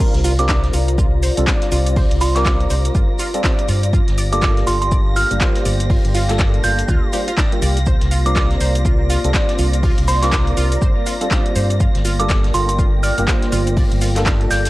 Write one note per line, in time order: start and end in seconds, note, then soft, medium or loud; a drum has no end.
0.00 0.33 G3 loud
0.00 0.33 C4 medium
0.00 0.33 D4 medium
0.00 0.14 F4 medium
0.00 0.33 F4 medium
0.00 5.11 F4 medium
0.00 0.33 A#4 loud
0.00 3.89 C5 medium
0.00 3.89 F5 medium
0.00 1.95 A#5 medium
0.00 5.86 D6 medium
0.00 14.70 A#6 medium
0.00 kick loud
0.00 crash loud
0.00 cabasa soft
0.00 shaker medium
0.13 0.68 C2 loud
0.13 5.37 D5 medium
0.13 snare soft
0.13 closed hi-hat medium
0.24 0.38 F4 loud
0.24 open hi-hat loud
0.24 cabasa medium
0.24 shaker medium
0.38 1.34 G3 medium
0.38 1.34 C4 medium
0.38 1.34 D4 medium
0.38 1.34 F4 medium
0.38 1.34 A#4 loud
0.38 0.55 D6 medium
0.38 closed hi-hat medium
0.38 cabasa soft
0.48 0.58 C5 medium
0.48 kick loud
0.48 snare loud
0.48 clap loud
0.48 cabasa soft
0.48 shaker medium
0.63 snare soft
0.63 closed hi-hat soft
0.73 1.29 C2 medium
0.73 0.87 F4 medium
0.73 open hi-hat loud
0.73 cabasa medium
0.73 shaker medium
0.88 closed hi-hat medium
0.88 cabasa soft
0.98 1.12 F4 loud
0.98 kick loud
0.98 cabasa soft
0.98 shaker medium
1.23 1.32 C5 medium
1.23 open hi-hat loud
1.23 cabasa medium
1.23 shaker medium
1.37 1.44 C2 medium
1.37 1.45 G3 medium
1.37 1.45 C4 medium
1.37 1.45 D4 medium
1.37 1.45 F4 medium
1.37 1.45 A4 loud
1.37 closed hi-hat medium
1.37 cabasa soft
1.47 2.32 G3 medium
1.47 2.32 C4 medium
1.47 2.32 D4 medium
1.47 1.61 F4 medium
1.47 2.32 F4 medium
1.47 2.33 D5 loud
1.47 kick loud
1.47 snare loud
1.47 clap loud
1.47 cabasa soft
1.47 shaker medium
1.61 snare medium
1.61 closed hi-hat medium
1.72 2.03 C2 loud
1.72 1.86 F4 loud
1.72 open hi-hat loud
1.72 cabasa medium
1.72 shaker medium
1.86 closed hi-hat medium
1.86 cabasa soft
1.96 2.06 C5 medium
1.96 3.91 A#5 medium
1.96 kick loud
1.96 open hi-hat medium
1.96 cabasa soft
2.11 2.65 C2 loud
2.11 closed hi-hat medium
2.21 2.35 F4 medium
2.21 2.33 C6 medium
2.21 open hi-hat loud
2.21 cabasa medium
2.21 shaker medium
2.35 3.30 G3 medium
2.35 3.31 C4 medium
2.35 3.31 D4 medium
2.35 3.31 F4 medium
2.35 3.31 A#4 loud
2.35 2.85 D6 medium
2.35 snare medium
2.35 clap soft
2.35 closed hi-hat medium
2.35 cabasa soft
2.46 2.59 F4 loud
2.46 kick loud
2.46 snare loud
2.46 clap loud
2.46 cabasa soft
2.46 shaker medium
2.60 closed hi-hat soft
2.70 2.88 C2 medium
2.70 2.79 C5 medium
2.70 open hi-hat loud
2.70 cabasa medium
2.70 shaker medium
2.85 closed hi-hat medium
2.85 cabasa soft
2.95 3.04 G1 medium
2.95 3.09 F4 medium
2.95 kick loud
2.95 cabasa soft
2.95 shaker medium
3.18 3.33 F4 loud
3.18 open hi-hat loud
3.18 cabasa medium
3.18 shaker medium
3.34 3.42 G3 medium
3.34 3.42 C4 medium
3.34 3.42 D4 medium
3.34 3.42 F4 medium
3.34 3.42 A4 loud
3.34 closed hi-hat medium
3.34 cabasa soft
3.44 3.92 C4 medium
3.44 3.92 D4 medium
3.44 3.92 F4 medium
3.44 3.53 C5 medium
3.44 3.92 D5 loud
3.44 kick loud
3.44 snare loud
3.44 clap loud
3.44 cabasa soft
3.44 shaker medium
3.59 closed hi-hat medium
3.68 4.00 G2 medium
3.68 3.82 F4 medium
3.68 open hi-hat loud
3.68 cabasa medium
3.68 shaker medium
3.83 closed hi-hat medium
3.83 cabasa soft
3.93 14.70 A#3 medium
3.93 4.07 F4 loud
3.93 9.02 G4 medium
3.93 14.70 F5 medium
3.93 7.83 G5 medium
3.93 kick loud
3.93 cabasa soft
3.93 shaker medium
4.01 9.45 F5 medium
4.08 4.61 G1 medium
4.08 snare soft
4.08 closed hi-hat medium
4.18 4.27 D5 medium
4.18 open hi-hat loud
4.18 cabasa medium
4.18 shaker medium
4.32 5.27 G3 medium
4.32 5.27 A#3 medium
4.32 5.27 D4 medium
4.32 5.28 F4 medium
4.32 5.28 A4 loud
4.32 4.49 D6 medium
4.32 closed hi-hat medium
4.32 cabasa soft
4.42 4.56 F4 medium
4.42 kick loud
4.42 snare loud
4.42 clap loud
4.42 cabasa soft
4.42 shaker medium
4.57 snare soft
4.57 closed hi-hat soft
4.67 5.23 G1 medium
4.67 4.81 F4 loud
4.67 4.76 C6 medium
4.67 open hi-hat loud
4.67 cabasa medium
4.67 shaker medium
4.82 4.88 C6 medium
4.82 closed hi-hat medium
4.82 cabasa soft
4.92 5.01 D5 medium
4.92 kick loud
4.92 cabasa soft
4.92 shaker medium
5.16 5.30 F4 medium
5.16 5.35 F6 medium
5.16 open hi-hat loud
5.16 cabasa medium
5.16 shaker medium
5.31 5.37 G1 medium
5.31 5.38 G3 medium
5.31 5.38 A#3 medium
5.31 5.38 D4 medium
5.31 5.39 F4 medium
5.31 5.39 G4 loud
5.31 closed hi-hat medium
5.31 cabasa soft
5.40 6.25 G3 medium
5.40 6.26 A#3 medium
5.40 6.26 D4 medium
5.40 5.55 F4 loud
5.40 6.26 F4 medium
5.40 6.26 C5 loud
5.40 kick loud
5.40 snare loud
5.40 clap loud
5.40 cabasa soft
5.40 shaker medium
5.56 snare soft
5.56 closed hi-hat soft
5.65 5.96 G1 loud
5.65 5.75 D5 medium
5.65 open hi-hat loud
5.65 cabasa medium
5.65 shaker medium
5.80 closed hi-hat medium
5.80 cabasa soft
5.90 6.04 F4 medium
5.90 11.76 C6 medium
5.90 kick loud
5.90 open hi-hat medium
5.90 cabasa soft
6.05 6.58 G1 loud
6.05 closed hi-hat soft
6.15 6.28 F4 loud
6.15 open hi-hat loud
6.15 cabasa medium
6.15 shaker medium
6.29 7.11 G3 medium
6.29 7.11 A#3 medium
6.29 7.11 D4 medium
6.29 7.11 F4 medium
6.29 7.11 A4 loud
6.29 snare medium
6.29 clap soft
6.29 closed hi-hat medium
6.29 cabasa soft
6.38 6.48 D5 medium
6.38 kick loud
6.38 snare loud
6.38 clap loud
6.38 cabasa soft
6.38 shaker medium
6.54 closed hi-hat soft
6.64 6.81 G1 medium
6.64 6.77 F4 medium
6.64 7.03 G6 medium
6.64 open hi-hat loud
6.64 cabasa medium
6.64 shaker medium
6.79 closed hi-hat medium
6.79 cabasa soft
6.88 6.98 D2 medium
6.88 7.02 F4 loud
6.88 kick loud
6.88 cabasa soft
6.88 shaker medium
7.12 7.31 G3 medium
7.12 7.31 A#3 medium
7.12 7.31 D4 medium
7.12 7.31 F4 medium
7.12 7.18 G4 medium
7.12 7.31 C5 medium
7.12 open hi-hat loud
7.12 cabasa medium
7.12 shaker medium
7.28 7.34 F4 loud
7.28 closed hi-hat medium
7.28 cabasa soft
7.37 7.51 D5 medium
7.37 kick loud
7.37 snare loud
7.37 clap loud
7.37 cabasa soft
7.37 shaker medium
7.52 7.78 G3 medium
7.52 7.78 A#3 medium
7.52 7.78 D4 medium
7.52 7.78 F4 medium
7.52 7.78 G4 medium
7.52 closed hi-hat medium
7.62 7.93 C2 medium
7.62 7.68 D5 medium
7.62 open hi-hat loud
7.62 cabasa medium
7.62 shaker medium
7.77 closed hi-hat medium
7.77 cabasa soft
7.86 14.70 F4 medium
7.86 7.96 C5 medium
7.86 11.76 D6 loud
7.86 kick loud
7.86 cabasa soft
7.86 shaker medium
8.01 8.55 C2 loud
8.01 snare soft
8.01 closed hi-hat medium
8.11 8.25 F4 medium
8.11 open hi-hat loud
8.11 cabasa medium
8.11 shaker medium
8.25 9.21 G3 medium
8.25 9.21 C4 medium
8.25 9.21 D4 medium
8.25 9.21 F4 medium
8.25 9.21 A#4 loud
8.25 13.40 D5 medium
8.25 8.42 D6 medium
8.25 closed hi-hat medium
8.25 cabasa soft
8.36 8.50 F4 loud
8.36 kick loud
8.36 snare loud
8.36 clap loud
8.36 cabasa soft
8.36 shaker medium
8.51 snare soft
8.51 closed hi-hat soft
8.60 9.16 C2 medium
8.60 8.70 C5 medium
8.60 open hi-hat loud
8.60 cabasa medium
8.60 shaker medium
8.75 closed hi-hat medium
8.75 cabasa soft
8.85 8.99 F4 medium
8.85 kick loud
8.85 cabasa soft
8.85 shaker medium
9.10 9.23 F4 loud
9.10 open hi-hat loud
9.10 cabasa medium
9.10 shaker medium
9.24 9.31 C2 medium
9.24 9.32 G3 medium
9.24 9.32 C4 medium
9.24 9.32 D4 medium
9.24 9.32 F4 medium
9.24 9.32 A4 medium
9.24 closed hi-hat medium
9.24 cabasa soft
9.34 10.19 G3 medium
9.34 10.19 C4 medium
9.34 10.19 D4 medium
9.34 10.19 F4 medium
9.34 9.43 C5 medium
9.34 10.20 D5 loud
9.34 kick loud
9.34 snare loud
9.34 clap loud
9.34 cabasa soft
9.34 shaker medium
9.49 snare soft
9.49 closed hi-hat soft
9.58 9.90 C2 loud
9.58 9.73 F4 medium
9.58 open hi-hat loud
9.58 cabasa medium
9.58 shaker medium
9.74 closed hi-hat medium
9.74 cabasa soft
9.83 9.97 F4 loud
9.83 kick loud
9.83 open hi-hat medium
9.83 cabasa soft
9.98 10.52 C2 loud
9.98 closed hi-hat medium
10.08 10.17 C5 medium
10.08 10.20 C6 medium
10.08 open hi-hat loud
10.08 cabasa medium
10.08 shaker medium
10.22 11.17 G3 medium
10.22 11.17 C4 medium
10.22 11.18 D4 medium
10.22 11.18 F4 medium
10.22 11.18 A#4 loud
10.22 10.72 D6 medium
10.22 snare medium
10.22 clap soft
10.22 closed hi-hat medium
10.22 cabasa soft
10.32 10.46 F4 medium
10.32 kick loud
10.32 snare loud
10.32 clap loud
10.32 cabasa soft
10.32 shaker medium
10.47 closed hi-hat soft
10.57 10.75 C2 medium
10.57 10.71 F4 loud
10.57 open hi-hat loud
10.57 cabasa medium
10.57 shaker medium
10.72 closed hi-hat medium
10.72 cabasa soft
10.82 10.91 G1 medium
10.82 10.91 C5 medium
10.82 kick loud
10.82 cabasa soft
10.82 shaker medium
11.06 11.20 F4 medium
11.06 open hi-hat loud
11.06 cabasa medium
11.06 shaker medium
11.21 11.28 G3 medium
11.21 11.29 C4 medium
11.21 11.29 D4 medium
11.21 11.29 F4 medium
11.21 11.29 A4 loud
11.21 closed hi-hat medium
11.21 cabasa soft
11.31 11.79 G3 medium
11.31 11.79 C4 medium
11.31 11.79 D4 medium
11.31 11.45 F4 loud
11.31 11.79 F4 medium
11.31 11.79 D5 loud
11.31 kick loud
11.31 snare loud
11.31 clap loud
11.31 cabasa soft
11.31 shaker medium
11.46 closed hi-hat medium
11.55 11.87 G2 medium
11.55 11.65 C5 medium
11.55 open hi-hat loud
11.55 cabasa medium
11.55 shaker medium
11.70 closed hi-hat medium
11.70 cabasa soft
11.80 11.94 F4 medium
11.80 13.75 G5 medium
11.80 14.70 D6 loud
11.80 kick loud
11.80 cabasa soft
11.80 shaker medium
11.95 12.48 G1 loud
11.95 snare soft
11.95 closed hi-hat medium
12.05 12.18 F4 loud
12.05 open hi-hat loud
12.05 cabasa medium
12.05 shaker medium
12.19 13.14 G3 medium
12.19 13.14 A#3 medium
12.19 13.14 D4 medium
12.19 13.14 F4 medium
12.19 13.15 A4 loud
12.19 14.70 G5 medium
12.19 12.36 D6 medium
12.19 closed hi-hat medium
12.19 cabasa soft
12.26 14.70 A#3 medium
12.26 12.38 D5 medium
12.26 kick loud
12.26 snare loud
12.26 clap loud
12.26 cabasa soft
12.26 shaker medium
12.44 snare soft
12.44 closed hi-hat soft
12.54 13.10 G1 medium
12.54 12.68 F4 medium
12.54 12.63 C6 medium
12.54 open hi-hat loud
12.54 cabasa medium
12.54 shaker medium
12.69 12.75 C6 medium
12.69 closed hi-hat medium
12.69 cabasa soft
12.78 12.92 F4 loud
12.78 kick loud
12.78 cabasa soft
12.78 shaker medium
13.03 13.12 D5 medium
13.03 13.22 F6 loud
13.03 open hi-hat loud
13.03 cabasa medium
13.03 shaker medium
13.18 13.24 G1 medium
13.18 13.25 G3 medium
13.18 13.25 A#3 medium
13.18 13.25 D4 medium
13.18 13.25 F4 medium
13.18 13.25 G4 loud
13.18 closed hi-hat medium
13.18 cabasa soft
13.27 14.12 G3 medium
13.27 14.13 D4 medium
13.27 13.41 F4 medium
13.27 14.13 F4 medium
13.27 14.13 C5 loud
13.27 kick loud
13.27 snare loud
13.27 clap loud
13.27 cabasa soft
13.27 shaker medium
13.42 snare soft
13.42 closed hi-hat medium
13.52 13.83 G1 loud
13.52 13.66 F4 loud
13.52 open hi-hat loud
13.52 cabasa medium
13.52 shaker medium
13.67 closed hi-hat medium
13.67 cabasa soft
13.77 14.70 A4 medium
13.77 13.86 D5 medium
13.77 kick loud
13.77 open hi-hat medium
13.77 cabasa soft
13.92 14.45 G1 loud
13.92 closed hi-hat medium
14.01 14.15 F4 medium
14.01 open hi-hat loud
14.01 cabasa medium
14.01 shaker medium
14.16 14.70 G3 medium
14.16 14.70 A#3 medium
14.16 14.70 D4 medium
14.16 14.70 F4 medium
14.16 14.70 A4 loud
14.16 snare medium
14.16 clap soft
14.16 closed hi-hat medium
14.16 cabasa soft
14.26 14.40 F4 loud
14.26 kick loud
14.26 snare loud
14.26 clap loud
14.26 cabasa soft
14.26 shaker medium
14.41 closed hi-hat soft
14.51 14.68 G1 medium
14.51 14.60 D5 medium
14.51 14.70 G6 medium
14.51 snare loud
14.51 open hi-hat loud
14.51 cabasa medium
14.51 shaker medium
14.65 snare loud
14.65 closed hi-hat medium
14.65 cabasa soft
14.65 shaker medium